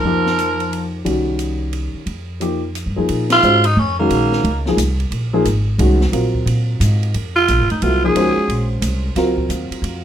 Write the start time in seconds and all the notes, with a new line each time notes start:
Already playing: F3 A#4
0.04 F2 F3 A#3 D#4 G4
0.26 snare
0.39 hi-hat pedal, ride
0.60 ride
0.73 ride
1.05 C2 D#3 G3 C#4 F#4, ride
1.39 hi-hat pedal, ride
1.73 ride
1.94 muted upright bass stroke
2.06 F2, ride
2.40 F3 A#3 D#4 G4, hi-hat pedal, ride
2.75 hi-hat pedal, ride
2.86 G2
2.96 F2 F3 A#3 D#4 G#4
3.09 A#2, ride
3.30 F4, snare, ride
3.42 G#2 G#3 C#4 F#4 C5, hi-hat pedal
3.64 D#4, ride
3.76 F2 C#4
3.99 D#3 G#3 A#3 C#4 F#4
4.10 A#1, ride
4.32 snare
4.44 C#2, ride
4.66 F3 A#3 D#4 G#4, snare
4.77 C2, hi-hat pedal, ride
5.00 ride
5.11 A#1, ride
5.33 F3 A#3 D#4 G#4
5.45 G#1, hi-hat pedal, ride
5.78 C2 D#3 G#3 C#4 F#4, ride
6.01 snare
6.12 A#1 F#3 C4 F4 A#4, ride
6.35 kick
6.46 A#2, ride
6.80 G#2, hi-hat pedal, ride
7.03 ride
7.14 F2, ride
7.36 F4
7.48 A#1, hi-hat pedal, ride
7.60 G#1
7.70 F1 D#4, ride
7.82 C2 F#3 B3 E4 F4 A4, ride
8.04 F3 A#3 D#4 G#4
8.15 C#2 G#3 C#4 F#4 C5, ride
8.37 muted upright bass stroke
8.48 A#1, ride
8.82 C2, hi-hat pedal, ride
9.15 C#2 F#3 C4 F4 A#4, snare, ride
9.38 kick
9.49 D#2, hi-hat pedal, ride
9.70 muted upright bass stroke, ride
9.82 F2, ride